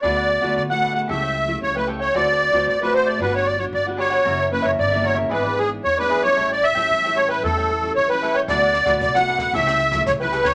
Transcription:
<<
  \new Staff \with { instrumentName = "Accordion" } { \time 4/4 \key d \major \tempo 4 = 114 d''4 d''16 fis''8 fis''16 e''4 cis''16 b'8 cis''16 | d''4 d''16 b'16 c''16 d''16 b'16 cis''16 d''16 cis''16 d''8 cis''8~ | cis''8 b'16 cis''16 d''8 cis''8 b'8 gis'8 cis''16 b'8 cis''16~ | cis''16 d''16 e''4 cis''16 b'16 a'4 cis''16 b'8 cis''16 |
d''4 d''16 fis''8 fis''16 e''4 cis''16 b'8 cis''16 | }
  \new Staff \with { instrumentName = "Cavaquinho" } { \time 4/4 \key d \major <d' a' b' fis''>16 <a' b' fis''>16 r16 <a' b' fis''>8 <a' b' fis''>16 <d' a' b' fis''>16 <a' b' fis''>16 <g' a' cis'' g''>16 <a' cis'' g''>16 r8. <a' cis'' g''>16 <g' a' cis'' g''>16 <a' cis'' g''>16 | <fis' a' c'' d''>16 <a' c'' d''>16 r16 <a' c'' d''>8 <a' c'' d''>16 <fis' a' c'' d''>16 <a' c'' d''>16 <d' g' b' fis''>16 <g' b' fis''>16 r8. <g' b' fis''>16 <d' g' b' fis''>16 <g' b' fis''>16 | <fis' ais' cis'' e''>16 <ais' cis'' e''>16 r16 <ais' cis'' e''>8 <ais' cis'' e''>16 <fis' ais' cis'' e''>16 <ais' cis'' e''>16 <e' gis' b' d''>16 <gis' b' d''>16 r8. <gis' b' d''>16 <e' gis' b' d''>16 <gis' b' d''>16 | <e' a' cis'' g''>16 <a' cis'' g''>16 r16 <a' cis'' g''>8 <a' cis'' g''>16 <e' a' cis'' g''>16 <a' cis'' g''>16 <e' a' cis'' g''>16 <a' cis'' g''>16 r8. <a' cis'' g''>16 <e' a' cis'' g''>16 <a' cis'' g''>16 |
<d' a' b' fis''>16 <a' b' fis''>16 r16 <a' b' fis''>8 <a' b' fis''>16 <d' a' b' fis''>16 <a' b' fis''>16 <g' a' cis'' g''>16 <a' cis'' g''>16 r8. <a' cis'' g''>16 <g' a' cis'' g''>16 <a' cis'' g''>16 | }
  \new Staff \with { instrumentName = "Nylon-string guitar" } { \time 4/4 \key d \major << { <a b fis'>8. <a b fis'>8 <a b fis'>8. <g a e'>8. <g a e'>8 <g a e'>8. | <a c' fis'>8. <a c' fis'>8 <a c' fis'>8. <b d' fis'>8. <b d' fis'>8 <b d' fis'>8. | <e ais cis'>16 r16 <e ais cis'>8 r16 <e ais cis'>8. <e b d'>8 <e b d'>8 r16 <e b d'>8 <g cis' e'>16~ | <g cis' e'>8 r16 <g cis' e'>8 <g cis' e'>8. <g cis' e'>8 r16 <g cis' e'>8 <g cis' e'>8. |
<a b fis'>8 r16 <a b fis'>8 <a b fis'>8. <g a e'>8 r16 <g a e'>8 <g a e'>8. | } \\ { d4 a,4 cis4 cis4 | d4 a,4 g4 d4 | fis,4 cis4 gis,4 gis,4 | a,4 e4 a,4 e4 |
d4 a,4 cis4 cis4 | } >> }
  \new Staff \with { instrumentName = "Upright bass" } { \clef bass \time 4/4 \key d \major d,8. d,16 d4 cis,4 cis,4 | d,8. d,16 a,,4 g,,4 g,,4 | fis,,8. fis,,16 g,,4 gis,,4 e,4 | a,,8. a,,16 a,4 e,4 a,,4 |
d,8. d,16 c,4 cis,4 cis,4 | }
  \new DrumStaff \with { instrumentName = "Drums" } \drummode { \time 4/4 r4 r4 r4 r4 | r4 r4 r4 r4 | r4 r4 r4 r4 | r4 r4 r4 r4 |
<hh bd ss>16 hh16 <hh ss>16 <hh bd ss>16 <hh bd>16 ss16 hh16 <bd ss>16 <hh bd>16 <hh ss>16 hh16 <hh bd ss>16 <hh bd ss>16 hh16 hh16 <bd ss>16 | }
>>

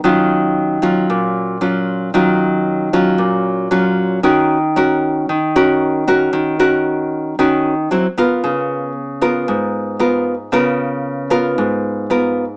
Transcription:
\new Staff \with { instrumentName = "Nylon-string guitar" } { \time 4/4 \key ees \minor \tempo 4 = 114 << { <ges des' f'>4. <ges des' f'>4. <ges des' f'>4 | <ges des' f'>4. <ges des' f'>4. <ges des' f'>4 | <des' ges' bes'>8 r8 <des' ges' bes'>4 r8 <des' ges' bes'>4 <des' ges' bes'>8~ | <des' ges' bes'>8 <des' ges' bes'>4. <des' ges' bes'>8 r8 <ges c' fes'>8 <ces' f' bes'>8~ |
<ces' f' bes'>4 r8 <ces' f' bes'>4. <ces' f' bes'>8 r8 | <ces' f' bes'>4. <ces' f' bes'>4. <ces' f' bes'>8 r8 | } \\ { ees2 bes,2 | ees2 bes,2 | ees2 ees2 | ees2 ees4 r4 |
des2 aes,2 | des2 aes,2 | } >> }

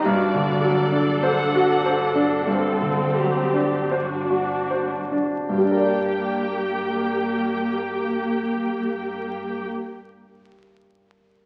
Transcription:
<<
  \new Staff \with { instrumentName = "Violin section" } { \time 4/4 \key g \minor \tempo 4 = 40 d''4 fis''4 r2 | g''1 | }
  \new Staff \with { instrumentName = "Viola section" } { \time 4/4 \key g \minor << { fis'8 a'4. a'8 g'8 fis'4 | g'1 | } \\ { d'4 d'4 c'4 d'4 | bes1 | } >> }
  \new Staff \with { instrumentName = "Grand piano" } { \time 4/4 \key g \minor g,16 d16 fis16 d'16 c''16 fis'16 c''16 d'16 g,16 d16 fis16 d'16 c''16 fis'16 c''16 d'16 | <g, g d' bes' d''>1 | }
  \new Staff \with { instrumentName = "Cello section" } { \clef bass \time 4/4 \key g \minor g,1 | g,1 | }
>>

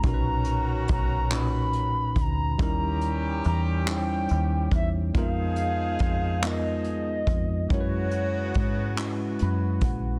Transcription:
<<
  \new Staff \with { instrumentName = "Soft synth lead" } { \time 6/8 \key b \major \tempo 4. = 47 ais''4 ais''8 b''4 ais''8 | ais''4 ais''8 g''4 e''8 | eis''4. dis''4. | cis''2 r4 | }
  \new Staff \with { instrumentName = "Tine electric piano" } { \time 6/8 \key b \major << { r2. | r2. | r2. | r2 b''8 fis''8 | } \\ { <ais, cis' dis' fis' ais' b'>4 r8 <ais, cis' dis' fis' b'>4 r8 | <g cis' dis' e' ais'>4 r8 <g cis' dis' e' c'' cis''>4 r8 | <gis b dis' eis' ais'>4 r8 <gis b dis' eis' ais'>4 r8 | <gis cis' e' fis' ais' b'>4 r8 <gis cis' e' fis' b'>4 r8 | } >> }
  \new Staff \with { instrumentName = "Horn section" } { \time 6/8 \key b \major <dis fis cis' fis'>2~ <dis fis cis' fis'>8 r8 | <e g cis' g'>2~ <e g cis' g'>8 r8 | <eis gis dis' gis'>2~ <eis gis dis' gis'>8 r8 | <cis fis b fis'>2~ <cis fis b fis'>8 r8 | }
  \new Staff \with { instrumentName = "Fingered electric bass" } { \clef bass \time 6/8 \key b \major b,,4 b,,4. d,8 | dis,4 e,4 dis,8 e,8 | eis,4 eis,4. eis,8 | fis,4 gis,4 fis,8 ais,,8 | }
  \new DrumStaff \with { instrumentName = "Drums" } \drummode { \time 6/8 <hh bd>8 hh8 <hh bd>8 <hc hh>8 hh8 <hh bd>8 | <hh bd>8 hh8 hh8 hc8 hh8 <hh bd>8 | <hh bd>8 hh8 <hh bd>8 hc8 hh8 <hh bd>8 | <hh bd>8 hh8 <hh bd>8 <hc hh>8 hh8 <hh bd>8 | }
>>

